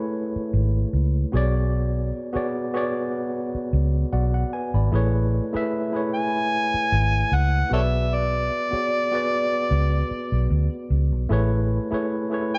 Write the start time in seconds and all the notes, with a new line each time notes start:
Already playing: A3 E4 G#4 B4 C#5
0.36 muted fingered electric bass stroke
0.53 G#1
0.93 C#2
1.32 B1 B3 F#4 G#4 C#5
1.37 D5
2.33 B3 F#4 G#4 C#5 D5, muted fingered electric bass stroke
2.74 B3 F#4 G#4 C#5 D5
3.55 muted fingered electric bass stroke
3.73 C#2
4.13 B1 F#4 D5 F#5
4.34 F#5
4.53 B4 G#5
4.74 G#1 D5 B5
4.92 A1 A3 E4 G#4 B4 C#5
5.53 A3 E4 G#4 B4 E5, muted fingered electric bass stroke
5.92 A3 E4 G#4 B4
5.96 C#5
6.14 G#5
6.74 muted fingered electric bass stroke
6.92 G#1
7.32 C#2 F#5
7.69 B1 B3 F#4 G#4 A4 B4 C#5 E5
7.74 D5
8.14 D5
8.71 B3 F#4 G#4 C#5, muted fingered electric bass stroke
8.75 D5
9.11 B3 F#4 G#4 B4 D5
9.71 C#2
10.11 muted fingered electric bass stroke
10.32 B1
10.50 D2
10.90 C#2
11.12 B1
11.29 A1 A3 E4 G#4 B4 C#5
11.91 A3 E4 G#4 B4 C#5, muted fingered electric bass stroke
12.30 A3 E4 G#4 B4 C#5
12.54 G#5